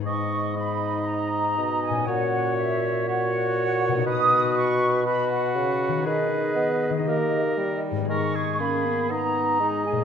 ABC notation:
X:1
M:4/4
L:1/8
Q:1/4=119
K:G#m
V:1 name="Flute section"
c'2 b2 a3 g | f2 e2 f4 | d'2 c'2 b f3 | d6- d z |
c'2 b2 a3 g |]
V:2 name="Oboe"
d2 d6 | c4 c4 | B4 B4 | B4 A3 z |
A G3 d4 |]
V:3 name="Clarinet"
D2 D6 | F4 F4 | F4 F4 | G4 =G3 z |
D2 C B, D2 D G |]
V:4 name="Harp"
[G,,B,DG]8 | [A,,CF]8 | [B,,B,DF]8 | [D,B,DG]4 [D,A,D=G]4 |
[G,,B,DG]8 |]
V:5 name="Bassoon" clef=bass
G,,6 B,,2 | A,,8 | B,,6 C,2 | D,2 B,2 A,2 =G,2 |
G,2 A,2 B,2 G,2 |]